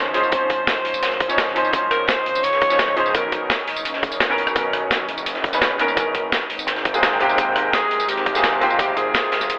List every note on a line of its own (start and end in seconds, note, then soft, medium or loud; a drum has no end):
0.00 0.75 G#1 loud
0.00 0.13 F3 medium
0.00 3.11 F3 medium
0.00 0.14 C#4 medium
0.00 6.46 C#4 medium
0.00 0.15 D#4 medium
0.00 6.46 D#4 medium
0.00 0.11 C5 loud
0.00 1.31 C#5 loud
0.00 1.01 C6 medium
0.06 cross-stick soft
0.13 0.28 F3 medium
0.13 0.30 C#4 medium
0.13 0.30 D#4 medium
0.13 0.23 G#4 medium
0.13 0.31 C5 loud
0.13 closed hi-hat medium
0.23 tambourine soft
0.30 1.26 F3 medium
0.30 1.27 C#4 medium
0.30 1.28 D#4 medium
0.30 1.52 C5 loud
0.30 kick loud
0.30 closed hi-hat medium
0.30 closed hi-hat loud
0.30 tambourine medium
0.35 1.29 C5 loud
0.50 kick medium
0.50 closed hi-hat medium
0.67 snare loud
0.67 closed hi-hat medium
0.67 tambourine soft
0.85 2.16 G#1 loud
0.85 closed hi-hat medium
0.85 open hi-hat medium
0.94 closed hi-hat soft
0.94 tambourine medium
1.03 snare loud
1.03 closed hi-hat loud
1.03 closed hi-hat medium
1.03 tambourine soft
1.12 snare medium
1.12 closed hi-hat soft
1.20 kick loud
1.20 closed hi-hat medium
1.28 1.53 F3 medium
1.28 1.53 C#4 medium
1.28 1.54 D#4 medium
1.28 1.54 C#5 medium
1.28 closed hi-hat soft
1.28 tambourine medium
1.38 snare loud
1.38 closed hi-hat loud
1.38 closed hi-hat medium
1.38 tambourine soft
1.47 snare soft
1.54 1.69 F3 medium
1.54 1.71 C#4 medium
1.54 1.71 D#4 medium
1.54 1.72 C5 loud
1.54 closed hi-hat medium
1.65 tambourine soft
1.71 2.67 F3 medium
1.71 2.68 C#4 medium
1.71 2.69 D#4 medium
1.71 kick loud
1.71 closed hi-hat medium
1.71 tambourine soft
1.76 2.70 C5 loud
1.91 2.10 A#4 loud
1.91 cross-stick medium
1.91 closed hi-hat medium
2.08 2.46 C5 loud
2.08 snare loud
2.08 closed hi-hat loud
2.08 closed hi-hat medium
2.08 tambourine soft
2.26 2.42 G#1 loud
2.26 closed hi-hat medium
2.35 closed hi-hat soft
2.35 tambourine medium
2.43 3.13 C#2 loud
2.43 2.99 C#5 loud
2.43 closed hi-hat loud
2.43 closed hi-hat medium
2.43 tambourine soft
2.53 snare soft
2.53 closed hi-hat soft
2.61 kick loud
2.61 closed hi-hat medium
2.69 2.94 F3 medium
2.69 2.95 C#4 medium
2.69 2.95 D#4 medium
2.69 2.96 C#5 medium
2.69 snare soft
2.69 closed hi-hat soft
2.69 tambourine medium
2.79 snare loud
2.79 closed hi-hat loud
2.79 closed hi-hat medium
2.79 tambourine soft
2.88 cross-stick soft
2.96 3.12 F3 medium
2.96 3.12 C#4 medium
2.96 3.13 D#4 medium
2.96 3.17 G#4 loud
2.96 3.13 C5 loud
2.96 closed hi-hat medium
3.06 tambourine soft
3.12 3.48 B1 loud
3.12 4.09 D#3 medium
3.12 4.09 B3 medium
3.12 4.10 C#4 medium
3.12 3.50 A#4 medium
3.12 kick loud
3.12 closed hi-hat medium
3.12 tambourine soft
3.17 4.11 A#4 loud
3.32 kick medium
3.32 closed hi-hat medium
3.32 tambourine soft
3.50 snare loud
3.50 closed hi-hat medium
3.50 tambourine soft
3.59 closed hi-hat soft
3.67 4.40 F#1 loud
3.67 closed hi-hat medium
3.67 open hi-hat medium
3.76 closed hi-hat soft
3.76 tambourine medium
3.85 closed hi-hat medium
3.85 tambourine soft
3.94 snare medium
3.94 closed hi-hat soft
4.03 kick loud
4.03 closed hi-hat medium
4.03 tambourine soft
4.12 closed hi-hat soft
4.12 tambourine medium
4.20 snare loud
4.20 closed hi-hat medium
4.20 closed hi-hat loud
4.20 tambourine soft
4.28 4.52 D#3 medium
4.28 4.53 B3 medium
4.28 4.54 C#4 medium
4.28 4.54 A#4 loud
4.28 snare medium
4.38 4.54 B1 loud
4.38 closed hi-hat medium
4.47 cross-stick medium
4.47 tambourine soft
4.53 5.07 B1 loud
4.53 5.50 D#3 medium
4.53 5.51 B3 medium
4.53 5.52 C#4 medium
4.53 kick loud
4.53 closed hi-hat medium
4.53 tambourine soft
4.58 5.52 A#4 loud
4.73 cross-stick medium
4.73 closed hi-hat medium
4.91 snare loud
4.91 closed hi-hat medium
4.91 tambourine medium
5.09 6.40 F#1 loud
5.09 closed hi-hat medium
5.18 closed hi-hat soft
5.18 tambourine medium
5.26 closed hi-hat medium
5.26 tambourine medium
5.35 snare soft
5.35 closed hi-hat soft
5.44 kick loud
5.44 closed hi-hat medium
5.52 5.77 D#3 medium
5.52 5.77 B3 medium
5.52 5.78 C#4 medium
5.52 5.78 B4 medium
5.52 snare soft
5.52 closed hi-hat soft
5.52 tambourine medium
5.61 snare loud
5.61 closed hi-hat medium
5.61 closed hi-hat loud
5.61 tambourine soft
5.71 cross-stick soft
5.78 5.93 D#3 loud
5.78 5.95 B3 medium
5.78 5.95 C#4 medium
5.78 5.96 A#4 loud
5.78 closed hi-hat medium
5.88 tambourine soft
5.94 6.48 D#3 medium
5.94 6.48 B3 medium
5.94 6.49 C#4 medium
5.94 kick loud
5.94 closed hi-hat medium
5.94 tambourine medium
6.00 6.50 A#4 loud
6.15 kick medium
6.15 closed hi-hat medium
6.32 snare loud
6.32 closed hi-hat loud
6.32 closed hi-hat medium
6.32 tambourine medium
6.41 closed hi-hat soft
6.50 7.81 G#1 loud
6.50 9.59 G#3 medium
6.50 9.59 C4 medium
6.50 9.59 A#4 medium
6.50 8.59 G5 medium
6.50 closed hi-hat medium
6.50 open hi-hat medium
6.59 closed hi-hat soft
6.59 tambourine medium
6.67 snare loud
6.67 closed hi-hat medium
6.67 tambourine medium
6.76 snare medium
6.76 closed hi-hat soft
6.85 kick loud
6.85 closed hi-hat medium
6.93 7.18 C3 medium
6.93 7.18 G#3 medium
6.93 7.19 A#3 medium
6.93 7.19 G#4 medium
6.93 closed hi-hat soft
6.93 tambourine medium
7.03 snare loud
7.03 closed hi-hat medium
7.03 tambourine medium
7.12 snare soft
7.19 7.34 C3 loud
7.19 7.36 G#3 medium
7.19 7.36 A#3 medium
7.19 7.37 G4 loud
7.19 closed hi-hat medium
7.29 tambourine soft
7.35 8.32 C3 medium
7.35 8.33 G#3 medium
7.35 8.34 A#3 medium
7.35 kick loud
7.35 closed hi-hat medium
7.35 tambourine medium
7.41 8.35 G5 loud
7.56 cross-stick medium
7.56 closed hi-hat medium
7.73 8.10 G#4 loud
7.73 snare loud
7.73 closed hi-hat medium
7.73 closed hi-hat loud
7.73 tambourine medium
7.91 8.07 D#1 loud
7.91 closed hi-hat medium
8.00 closed hi-hat soft
8.00 tambourine medium
8.08 9.13 G#1 medium
8.08 8.63 G4 loud
8.08 closed hi-hat loud
8.08 closed hi-hat medium
8.08 tambourine medium
8.17 snare soft
8.17 closed hi-hat soft
8.26 kick loud
8.26 closed hi-hat medium
8.34 8.59 C3 medium
8.34 8.59 G#3 medium
8.34 8.60 A#3 medium
8.34 8.60 G#4 medium
8.34 snare soft
8.34 closed hi-hat soft
8.34 tambourine medium
8.44 snare loud
8.44 closed hi-hat loud
8.44 closed hi-hat medium
8.44 tambourine medium
8.53 cross-stick soft
8.60 8.75 C3 loud
8.60 8.77 G#3 medium
8.60 8.77 A#3 medium
8.60 8.81 F4 loud
8.60 9.59 F4 medium
8.60 8.78 G4 loud
8.60 closed hi-hat medium
8.70 tambourine soft
8.77 9.59 C3 medium
8.77 9.59 G#3 medium
8.77 9.59 A#3 medium
8.77 8.98 G4 loud
8.77 kick loud
8.77 closed hi-hat loud
8.77 closed hi-hat medium
8.77 tambourine medium
8.82 9.59 G5 loud
8.97 9.59 G#4 loud
8.97 kick medium
8.97 closed hi-hat medium
8.97 tambourine soft
9.14 snare loud
9.14 closed hi-hat medium
9.14 closed hi-hat loud
9.14 tambourine medium
9.24 closed hi-hat soft
9.32 9.59 D#1 loud
9.32 snare loud
9.32 closed hi-hat medium
9.32 open hi-hat medium
9.41 snare soft
9.41 closed hi-hat soft
9.41 tambourine medium
9.50 closed hi-hat loud
9.50 closed hi-hat medium
9.50 tambourine soft